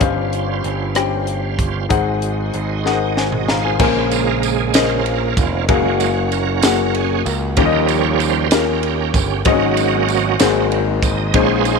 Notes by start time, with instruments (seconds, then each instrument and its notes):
Already playing: tonewheel organ G#4 C#5, upright piano C#5 A#5
0.00 picked electric bass G1, upright piano G2 C#4 G4 C5 F5, tonewheel organ G3 C#4 F4 C5, kick, closed hi-hat
0.33 closed hi-hat
0.64 picked electric bass G1, closed hi-hat
0.95 upright piano C#4 G4 C5 G5, cross-stick, closed hi-hat
1.27 closed hi-hat
1.59 kick, closed hi-hat
1.89 picked electric bass G#1, upright piano G#2 D#4 G#4 C5 F#5, tonewheel organ G#3 D#4 F#4 C5, kick, closed hi-hat
2.22 closed hi-hat
2.54 picked electric bass G#1, tonewheel organ C5, closed hi-hat
2.85 upright piano D#4 G#4 A#4 F#5, tonewheel organ D#5, snare
2.92 upright piano C5
3.16 upright piano C5 G#5, tonewheel organ C#5 D#5, snare
3.32 mid tom
3.48 tonewheel organ F4 G#4 C5 F5, upright piano F5 A#5, snare
3.64 upright piano C5 G#5
3.79 picked electric bass A#1, upright piano A#2 C#4 A#4 C5 G#5, tonewheel organ C#3 G#3 A#3, kick, crash
4.11 tonewheel organ A#4, ride, tambourine
4.43 tonewheel organ G#4, ride, tambourine
4.74 tonewheel organ C#3 G#3 C#4 F4 A#4 C5, upright piano C#4 A#4 C5 D#5, snare, ride, tambourine
5.06 ride
5.37 picked electric bass F1, kick, ride, tambourine
5.68 picked electric bass F#1, tonewheel organ F#3 G#3 A#3 C#4 F#4, upright piano A#3 F#4 G#4 F5, kick, ride
6.00 ride, tambourine
6.31 tonewheel organ C#4 F#4 A#4, ride, tambourine
6.62 upright piano A#3 F#4 G#4 F#5, snare, ride, tambourine
6.95 tonewheel organ G#4, ride
7.26 picked electric bass C#2, tonewheel organ A#4, ride, tambourine
7.56 picked electric bass D#2, upright piano D#3 C#4 F4 G4 C#5, tonewheel organ F3 G3 C#4 G4 A#4 D#5, kick, ride
7.65 upright piano D#5
7.88 tonewheel organ C#5, ride, tambourine
8.20 tonewheel organ C5, ride, tambourine
8.51 upright piano C#4 F4 G4 A#4, tonewheel organ C#4 G4 A#4, snare, ride, tambourine
8.83 ride
9.14 picked electric bass G1, kick, ride, tambourine
9.45 picked electric bass G#1, upright piano G#2 C4 F#4 G#4 D#5, tonewheel organ F#3 A#3 C#4 F#4 D#5, kick, ride
9.52 upright piano C#4
9.77 ride, tambourine
10.08 ride, tambourine
10.38 picked electric bass G#1, upright piano G#2 A#3 F#4 G#4 C5, tonewheel organ F#3 A#3 C4, snare, ride, tambourine
10.72 ride
11.02 picked electric bass G#1, tonewheel organ D#5, kick, ride, tambourine
11.34 picked electric bass A#1, upright piano A#2 G#3 C4 D#4 C5, tonewheel organ G#3 C#4 D#4 F4 G#4 C5 C#5, kick, ride
11.41 upright piano C#4
11.58 tonewheel organ B4
11.64 tonewheel organ D#4 G#4 C5, ride, tambourine